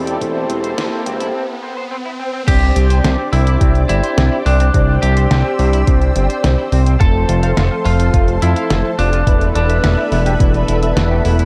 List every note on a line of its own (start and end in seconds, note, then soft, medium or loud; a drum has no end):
0.00 0.17 E1 loud
0.00 0.18 C4 loud
0.00 0.18 E4 medium
0.00 0.18 G4 medium
0.00 0.18 A4 loud
0.00 1.31 A4 medium
0.00 0.18 D5 loud
0.00 0.19 G5 medium
0.00 1.31 C6 medium
0.00 1.31 E6 medium
0.00 riser medium
0.07 0.14 C4 loud
0.07 closed hi-hat medium
0.21 0.46 E1 loud
0.21 1.34 C4 medium
0.21 0.26 C4 medium
0.21 1.34 E4 medium
0.21 1.35 G4 medium
0.21 1.34 A4 medium
0.21 1.35 C5 medium
0.21 1.33 A5 medium
0.21 kick loud
0.21 closed hi-hat medium
0.50 0.74 E1 loud
0.50 0.60 C4 medium
0.50 closed hi-hat medium
0.64 0.71 C5 loud
0.64 closed hi-hat medium
0.78 0.90 E1 loud
0.78 0.82 C5 loud
0.78 snare loud
0.78 closed hi-hat medium
0.92 0.96 C4 medium
1.06 1.31 E1 loud
1.06 1.17 C4 loud
1.06 closed hi-hat medium
1.20 1.27 E4 loud
1.20 closed hi-hat soft
1.34 1.45 C4 medium
1.63 1.73 C4 medium
1.77 1.84 C5 loud
1.91 1.95 C4 loud
2.05 2.10 E4 medium
2.19 2.30 C4 loud
2.33 2.41 C4 loud
2.48 2.72 C2 loud
2.48 2.52 C4 medium
2.48 4.42 C4 medium
2.48 4.43 D4 medium
2.48 3.21 G4 loud
2.48 4.43 G4 medium
2.48 4.43 C5 medium
2.48 9.23 C5 medium
2.48 4.43 D5 medium
2.48 6.97 D5 medium
2.48 6.97 G5 medium
2.48 4.72 D6 loud
2.48 kick loud
2.48 closed hi-hat medium
2.48 crash loud
2.76 3.00 C2 loud
2.76 2.87 C4 medium
2.76 closed hi-hat medium
2.90 2.97 C5 loud
2.90 closed hi-hat medium
3.04 3.17 C2 loud
3.04 3.09 C5 loud
3.04 snare loud
3.04 closed hi-hat medium
3.19 3.23 C4 medium
3.33 3.57 C2 loud
3.33 3.43 C4 loud
3.33 3.81 E4 medium
3.33 open hi-hat medium
3.47 3.54 E4 loud
3.47 closed hi-hat medium
3.61 3.85 C2 loud
3.61 3.72 C4 medium
3.61 kick loud
3.61 closed hi-hat medium
3.75 closed hi-hat soft
3.89 4.01 G1 medium
3.89 4.00 C4 medium
3.89 4.38 E4 medium
3.89 closed hi-hat medium
4.03 4.10 C5 loud
4.03 closed hi-hat medium
4.17 4.30 C2 medium
4.17 4.22 C4 loud
4.17 snare loud
4.17 closed hi-hat medium
4.32 4.36 E4 medium
4.46 4.70 C2 loud
4.46 4.56 C4 loud
4.46 4.95 D4 medium
4.46 open hi-hat medium
4.60 4.67 C4 loud
4.60 closed hi-hat medium
4.74 4.99 C2 medium
4.74 6.69 C4 medium
4.74 4.78 C4 medium
4.74 6.69 D4 medium
4.74 6.69 G4 medium
4.74 6.69 C5 medium
4.74 6.69 D5 medium
4.74 6.98 E6 loud
4.74 kick loud
4.74 closed hi-hat medium
5.02 5.27 C2 loud
5.02 5.13 C4 medium
5.02 6.89 G4 loud
5.02 closed hi-hat medium
5.17 5.24 C5 loud
5.17 closed hi-hat medium
5.31 5.43 C2 loud
5.31 5.35 C5 loud
5.31 snare loud
5.31 closed hi-hat medium
5.45 5.49 C4 medium
5.59 5.83 C2 loud
5.59 5.70 C4 loud
5.59 open hi-hat medium
5.73 5.80 E4 loud
5.73 closed hi-hat medium
5.87 6.12 C2 loud
5.87 5.98 C4 medium
5.87 kick loud
5.87 closed hi-hat medium
6.02 closed hi-hat soft
6.16 6.28 G1 medium
6.16 6.26 C4 medium
6.16 closed hi-hat medium
6.30 6.37 C5 loud
6.30 closed hi-hat medium
6.44 6.56 C2 medium
6.44 6.48 C4 loud
6.44 snare loud
6.44 closed hi-hat medium
6.58 6.62 E4 medium
6.72 6.97 C2 loud
6.72 6.83 C4 loud
6.72 open hi-hat medium
6.86 6.93 C4 loud
6.86 closed hi-hat medium
7.00 7.25 F1 loud
7.00 8.95 F3 medium
7.00 8.95 A3 medium
7.00 8.95 C4 medium
7.00 7.05 F4 medium
7.00 7.74 A4 loud
7.00 8.95 A4 medium
7.00 11.45 A4 medium
7.00 8.95 C5 medium
7.00 9.25 A5 medium
7.00 9.25 C6 loud
7.00 kick loud
7.00 closed hi-hat medium
7.29 7.53 F1 loud
7.29 7.39 F4 medium
7.29 closed hi-hat medium
7.43 7.50 F5 loud
7.43 closed hi-hat medium
7.57 7.69 F1 loud
7.57 7.61 F5 loud
7.57 snare loud
7.57 closed hi-hat medium
7.71 7.75 F4 medium
7.85 8.10 F1 loud
7.85 7.96 F4 loud
7.85 8.34 F4 medium
7.85 open hi-hat medium
7.99 8.07 A4 loud
7.99 closed hi-hat medium
8.14 8.38 F1 loud
8.14 8.24 F4 medium
8.14 kick loud
8.14 closed hi-hat medium
8.28 closed hi-hat soft
8.42 8.54 F2 medium
8.42 8.91 E4 loud
8.42 8.53 F4 medium
8.42 closed hi-hat medium
8.56 8.63 F5 medium
8.56 closed hi-hat medium
8.70 8.83 F1 medium
8.70 8.75 F4 loud
8.70 snare loud
8.70 closed hi-hat medium
8.84 8.89 A4 medium
8.99 9.23 F1 loud
8.99 9.47 D4 medium
8.99 9.09 F4 loud
8.99 open hi-hat medium
9.13 9.20 F4 loud
9.13 closed hi-hat medium
9.27 9.51 E1 loud
9.27 10.80 A3 medium
9.27 10.80 B3 medium
9.27 9.31 E4 medium
9.27 10.80 E4 medium
9.27 10.80 A4 medium
9.27 10.80 B4 medium
9.27 11.45 B4 medium
9.27 11.45 E5 medium
9.27 11.45 B5 medium
9.27 kick loud
9.27 closed hi-hat medium
9.41 closed hi-hat soft
9.55 9.80 E1 loud
9.55 11.42 D4 loud
9.55 9.66 E4 medium
9.55 closed hi-hat medium
9.69 9.77 E5 loud
9.69 closed hi-hat medium
9.84 9.96 E1 loud
9.84 9.88 E5 loud
9.84 snare loud
9.84 closed hi-hat medium
9.98 10.02 E4 medium
10.12 10.36 E1 loud
10.12 10.23 E4 loud
10.12 open hi-hat medium
10.26 10.33 G4 loud
10.26 closed hi-hat medium
10.40 10.65 E1 loud
10.40 10.51 E4 medium
10.40 kick loud
10.40 closed hi-hat medium
10.54 closed hi-hat soft
10.68 10.93 E1 medium
10.68 10.79 E4 medium
10.68 closed hi-hat medium
10.83 11.45 A3 medium
10.83 11.45 B3 medium
10.83 11.45 E4 medium
10.83 11.45 A4 medium
10.83 11.45 B4 loud
10.83 10.90 E5 loud
10.83 closed hi-hat medium
10.97 11.21 E1 loud
10.97 11.01 E4 loud
10.97 snare loud
10.97 closed hi-hat medium
11.11 11.15 G4 medium
11.25 11.45 E1 medium
11.25 11.36 E4 loud
11.25 open hi-hat medium
11.39 11.45 E4 loud
11.39 closed hi-hat medium